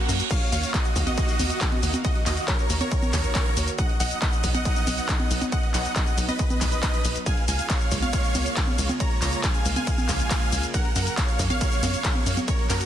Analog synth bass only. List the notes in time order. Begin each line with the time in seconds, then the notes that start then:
0.09 F#2
0.52 D#2
0.96 D#2
1.40 D#2
1.83 D#2
2.27 D#2
2.70 D#2
3.13 D#2
3.57 D#2
4.00 B1
4.44 B1
4.87 B1
5.31 B1
5.74 B1
6.18 B1
6.61 B1
7.05 B1
7.48 C#2
7.92 C#2
8.35 C#2
8.79 C#2
9.22 C#2
9.65 C#2
10.09 C#2
10.52 C#2
10.96 F#2
11.39 F#2
11.83 F#2
12.26 F#2
12.70 F#2